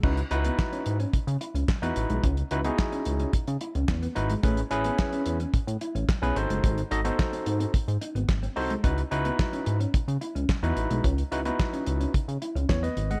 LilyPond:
<<
  \new Staff \with { instrumentName = "Tine electric piano" } { \time 4/4 \key cis \minor \tempo 4 = 109 <dis' e' fis' b'>16 r16 <dis' e' fis' b'>4~ <dis' e' fis' b'>16 r4. <dis' e' fis' b'>8. | r8 <dis' e' fis' b'>16 <dis' e' fis' gis'>4~ <dis' e' fis' gis'>16 r4. <dis' e' fis' b'>16 r16 | <cis' e' gis' b'>16 r16 <cis' e' gis' b'>4~ <cis' e' gis' b'>16 r4. <cis' e' gis' b'>16 <dis' fis' a' bis'>8~ | <dis' fis' a' bis'>16 r16 <dis' fis' a' dis''>16 <dis' fis' a' bis'>4~ <dis' fis' a' bis'>16 r4. <dis' fis' a' bis'>16 r16 |
<dis' e' fis' b'>16 r16 <dis' e' fis' b'>4~ <dis' e' fis' b'>16 r4. <dis' e' fis' b'>8. | r8 <dis' e' fis' b'>16 <dis' e' fis' b'>4~ <dis' e' fis' b'>16 r4 cis''16 <b' dis''>8 <dis'' fis''>16 | }
  \new Staff \with { instrumentName = "Clean electric guitar" } { \time 4/4 \key cis \minor cis'16 r8 b16 r16 cis'16 r16 cis'16 r8 e'16 cis'16 r16 b16 r16 gis16 | cis'16 r8 b16 r16 cis'16 r16 cis'16 r8 e'16 cis'16 r16 b16 r16 gis16 | a16 r8 b16 r16 cis'16 r16 cis'16 r8 e'16 cis'16 r16 b16 r16 gis16 | gis16 r8 b16 r16 bis16 r16 bis16 r8 dis'16 b16 r16 bis16 r16 gis16 |
cis'16 r8 b16 r16 cis'16 r16 cis'16 r8 e'16 cis'16 r16 b16 r16 gis16 | cis'16 r8 b16 r16 cis'16 r16 cis'16 r8 e'16 cis'16 r16 b16 r16 gis16 | }
  \new Staff \with { instrumentName = "Analog synth bass" } { \clef bass \time 4/4 \key cis \minor cis,8 cis,8 r8 gis,8 cis16 cis16 r16 cis,16 r16 e,16 a,,16 b,,16 | cis,8 cis,8 r8 cis,8 cis16 cis16 r16 cis,16 e,8 gis,,8 | a,,8 a,,8 r8 e,8 a,16 a,16 r16 a,,16 r16 b,,16 gis,,16 fis,,16 | gis,,8 gis,,8 r8 gis,8 gis,16 gis,16 r16 gis,,16 gis,,8 bis,,8 |
cis,8 cis,8 r8 gis,8 cis16 cis16 r16 cis,16 r16 e,16 a,,16 b,,16 | cis,8 cis,8 r8 cis,8 cis16 cis16 r16 cis,16 e,8 gis,,8 | }
  \new DrumStaff \with { instrumentName = "Drums" } \drummode { \time 4/4 <cymc bd>16 hh16 hh16 hh16 <hc bd sn>16 hh16 hh16 hh16 <hh bd>16 hh16 hh16 hh16 <hc bd sn>16 hh16 hh16 hh16 | <hh bd>16 hh16 hh16 hh16 <hc bd sn>16 hh16 hh16 hh16 <hh bd>16 hh16 hh16 hh16 <hc bd sn>16 hh16 hh16 hh16 | <hh bd>16 hh16 hh16 hh16 <hc bd sn>16 hh16 hh16 hh16 <hh bd>16 hh16 hh16 hh16 <hc bd sn>16 hh16 hh16 hh16 | <hh bd>16 hh16 hh16 hh16 <hc bd sn>16 hh16 hh16 hh16 <hh bd>16 hh16 hh16 hh16 <hc bd sn>16 hh16 hho16 hh16 |
<hh bd>16 hh16 hh16 hh16 <hc bd sn>16 hh16 hh16 hh16 <hh bd>16 hh16 hh16 hh16 <hc bd sn>16 hh16 hh16 hh16 | <hh bd>16 hh16 hh16 hh16 <hc bd sn>16 hh16 hh16 hh16 <hh bd>16 hh16 hh16 hh16 <hc bd sn>16 hh16 hh16 hh16 | }
>>